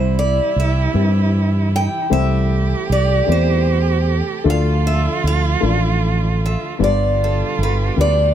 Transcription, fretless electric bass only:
0.00 0.39 C2 medium
0.56 0.87 C2 medium
0.95 1.87 G2 medium
2.12 2.73 C2 medium
2.90 3.21 C2 medium
3.29 4.21 E2 medium
4.45 5.07 D2 medium
5.24 5.55 D2 medium
5.63 6.55 A1 loud
6.80 7.42 G1 medium
7.59 7.90 G1 medium
7.98 8.34 D2 medium

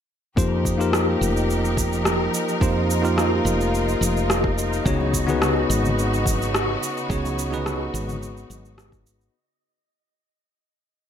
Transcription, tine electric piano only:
0.36 0.76 A#3 medium
0.36 0.76 D#4 medium
0.36 0.76 F4 medium
0.36 0.76 G4 medium
0.36 0.76 C5 medium
0.78 2.57 A#3 medium
0.78 2.58 D#4 medium
0.78 2.58 F4 medium
0.78 2.58 G4 medium
0.78 2.59 A#4 loud
2.60 3.00 A#3 medium
2.60 3.00 D#4 medium
2.60 3.00 F4 medium
2.60 3.01 G4 medium
2.60 3.01 C5 medium
3.02 4.81 A#3 medium
3.02 4.82 D#4 medium
3.02 4.82 F4 medium
3.02 4.83 G4 medium
3.02 4.83 A#4 loud
4.85 5.24 B3 medium
4.85 5.25 D#4 medium
4.85 5.25 F#4 medium
4.85 5.25 G#4 medium
4.85 5.25 C#5 medium
5.27 7.06 B3 loud
5.27 7.06 D#4 medium
5.27 7.07 F#4 medium
5.27 7.07 G#4 medium
5.27 7.08 B4 loud
7.09 7.49 B3 medium
7.09 7.49 D#4 medium
7.09 7.49 F#4 medium
7.09 7.49 G#4 medium
7.09 7.49 C#5 medium
7.50 9.30 B3 loud
7.50 9.30 D#4 medium
7.50 9.31 F#4 medium
7.50 9.31 G#4 medium
7.50 9.32 B4 loud

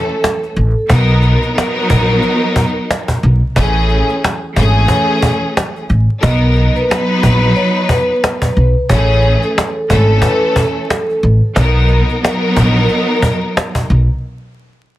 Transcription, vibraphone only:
0.00 0.85 A4 medium
6.23 6.72 D#5 loud
6.76 7.52 B4 medium
7.56 7.86 C#5 medium
7.89 8.85 B4 medium
8.89 9.39 C#5 loud
9.42 10.18 A4 medium
10.22 10.52 B4 medium
10.56 11.52 A4 medium

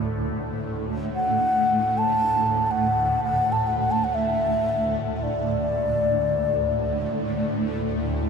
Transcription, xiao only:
1.15 1.99 F#5 medium
1.98 2.66 A5 medium
2.66 2.73 A5 medium
2.72 3.23 F#5 medium
3.24 3.54 F#5 medium
3.52 3.69 A5 medium
3.67 3.79 F#5 medium
3.80 3.93 F#5 medium
3.91 4.06 A5 medium
4.04 4.16 F#5 medium
4.15 5.16 E5 medium
5.16 5.25 E5 soft
5.23 7.29 D5 medium

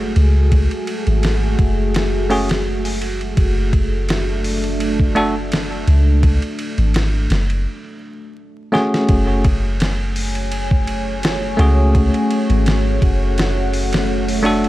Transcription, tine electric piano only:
2.30 2.48 A3 medium
2.30 2.48 C#4 medium
2.30 2.49 F#4 medium
2.30 2.49 G#4 loud
5.15 5.34 A3 loud
5.15 5.34 D4 medium
5.15 5.34 F#4 medium
5.15 5.35 A4 loud
8.72 9.44 A3 medium
8.72 9.44 C#4 medium
8.72 9.45 F#4 medium
8.72 9.45 G#4 loud
11.57 14.40 A3 medium
11.57 14.40 C#4 medium
11.57 14.41 F#4 medium
11.57 14.41 G#4 loud
14.43 14.69 A3 medium
14.43 14.69 D4 medium
14.43 14.69 F#4 medium
14.43 14.69 A4 loud

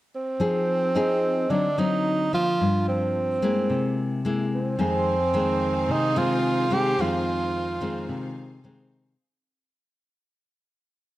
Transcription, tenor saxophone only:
0.15 1.52 C4 medium
1.51 1.79 D4 medium
1.78 2.32 D#4 medium
2.34 2.84 F4 loud
2.88 4.21 C4 medium
4.54 5.93 C4 medium
5.91 6.19 D#4 medium
6.18 6.75 F4 loud
6.74 7.02 G4 medium
7.01 8.64 F4 loud

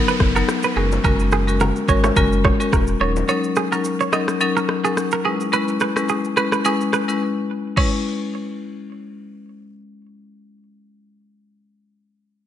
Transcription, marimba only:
0.00 0.32 F#3 medium
0.00 0.32 B3 medium
0.00 0.32 D#4 medium
0.00 0.32 A#4 loud
0.35 0.56 F#3 medium
0.35 0.56 B3 medium
0.35 0.56 D#4 medium
0.35 0.56 A#4 medium
0.76 0.98 G#3 medium
0.76 0.98 C#4 medium
0.76 0.98 F#4 medium
0.76 0.98 A#4 medium
1.04 1.26 G#3 medium
1.04 1.26 C#4 medium
1.04 1.26 F#4 medium
1.04 1.26 A#4 loud
1.48 1.68 G#3 medium
1.48 1.68 C#4 medium
1.48 1.68 F#4 medium
1.48 1.68 A#4 medium
1.88 2.10 G#3 medium
1.88 2.10 C#4 medium
1.88 2.10 F#4 medium
1.88 2.10 A#4 medium
2.16 2.56 G#3 medium
2.16 2.56 C#4 medium
2.16 2.56 F#4 medium
2.16 2.56 A#4 loud
2.60 2.80 G#3 medium
2.60 2.80 C#4 medium
2.60 2.80 F#4 medium
2.60 2.80 A#4 medium
3.00 3.22 F#3 medium
3.00 3.22 C#4 medium
3.00 3.22 D#4 medium
3.00 3.22 A#4 medium
3.28 3.50 F#3 medium
3.28 3.50 C#4 medium
3.28 3.50 D#4 medium
3.28 3.50 A#4 medium
3.72 3.92 F#3 medium
3.72 3.92 C#4 medium
3.72 3.92 D#4 medium
3.72 3.93 A#4 medium
4.13 4.34 F#3 medium
4.13 4.34 C#4 medium
4.13 4.34 D#4 medium
4.13 4.35 A#4 medium
4.41 4.80 F#3 medium
4.41 4.81 C#4 medium
4.41 4.81 D#4 medium
4.41 4.81 A#4 loud
4.84 5.04 F#3 medium
4.84 5.05 C#4 medium
4.84 5.05 D#4 medium
4.84 5.05 A#4 medium
5.25 5.46 G#3 medium
5.25 5.46 C#4 medium
5.25 5.47 E4 medium
5.25 5.47 B4 medium
5.52 5.74 G#3 medium
5.52 5.74 C#4 medium
5.52 5.75 E4 medium
5.52 5.75 B4 loud
5.96 6.16 G#3 medium
5.96 6.16 C#4 medium
5.96 6.17 E4 medium
5.96 6.17 B4 medium
6.36 6.58 G#3 medium
6.36 6.58 C#4 medium
6.36 6.59 E4 medium
6.36 6.59 B4 medium
6.64 7.05 G#3 medium
6.64 7.05 C#4 medium
6.64 7.05 E4 medium
6.64 7.05 B4 loud
7.08 7.21 G#3 medium
7.08 7.21 C#4 medium
7.08 7.21 E4 medium
7.08 7.21 B4 medium
7.77 11.47 G#3 medium
7.77 11.47 C#4 medium
7.77 11.48 E4 medium
7.77 11.48 B4 medium

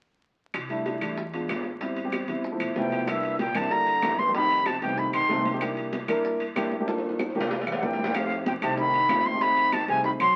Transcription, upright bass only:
0.54 0.98 C2 medium
1.02 1.46 E2 medium
1.49 2.23 A1 medium
2.28 2.58 G1 medium
2.60 2.75 B1 medium
2.75 3.49 C2 medium
3.55 3.99 G2 medium
4.03 4.76 F2 medium
4.82 5.11 C2 medium
5.29 6.03 C2 medium
6.08 6.52 G2 medium
6.55 7.29 G2 medium
7.35 7.64 C2 medium
7.67 7.81 E2 medium
7.83 8.56 F2 medium
8.62 9.06 C2 medium
9.09 9.83 F#1 medium
9.88 10.18 C2 medium
10.20 10.35 B1 medium

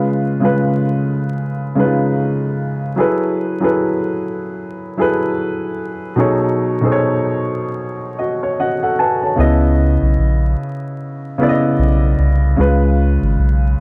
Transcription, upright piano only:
0.00 0.24 C#3 medium
0.00 0.24 G#3 medium
0.00 0.25 F4 medium
0.00 0.26 B4 medium
0.40 1.44 C#3 medium
0.40 1.45 G#3 medium
0.40 1.46 F4 medium
0.45 1.47 B4 medium
1.75 2.69 C#3 medium
1.75 2.70 G#3 medium
1.75 1.86 D#4 medium
1.80 2.71 B4 medium
1.85 2.74 F4 medium
2.96 3.43 F#3 medium
2.96 3.44 E4 medium
2.96 3.44 G#4 medium
2.96 3.45 A4 medium
3.00 3.45 B4 medium
3.60 4.64 F#3 medium
3.60 4.65 E4 medium
3.60 4.65 G#4 medium
3.60 4.66 A4 medium
3.64 4.66 B4 medium
4.97 5.90 F#3 medium
4.97 5.91 E4 medium
4.97 5.91 G#4 medium
4.97 5.92 A4 medium
5.01 5.92 B4 loud
6.16 6.63 B2 medium
6.16 6.64 F#3 medium
6.16 6.64 D#4 medium
6.16 6.65 G#4 medium
6.16 6.65 A4 medium
6.20 6.65 C#5 medium
6.81 7.85 B2 medium
6.81 7.85 F#3 medium
6.81 7.85 D#4 medium
6.81 7.86 G#4 medium
6.81 7.86 A4 medium
6.85 6.89 C5 medium
6.92 7.90 C#5 medium
8.19 8.41 F#4 soft
8.19 8.56 D#5 medium
8.43 8.58 C#5 medium
8.60 8.82 F#4 medium
8.60 8.81 D#5 medium
8.60 8.81 F#5 medium
8.83 8.98 A4 medium
8.83 8.98 F#5 medium
8.99 9.21 B4 medium
8.99 9.21 G#5 medium
8.99 9.21 A5 medium
9.23 9.61 C#5 soft
9.23 9.60 A5 medium
9.36 10.58 C#3 medium
9.36 10.59 B3 medium
9.36 10.60 E4 medium
9.40 10.60 D#5 loud
11.38 12.31 C#3 medium
11.38 12.31 B3 medium
11.38 12.32 E4 medium
11.43 11.48 D5 medium
11.49 12.36 D#5 loud
12.56 13.78 C#3 medium
12.56 13.79 G#3 medium
12.56 13.80 F4 medium
12.61 13.80 B4 medium

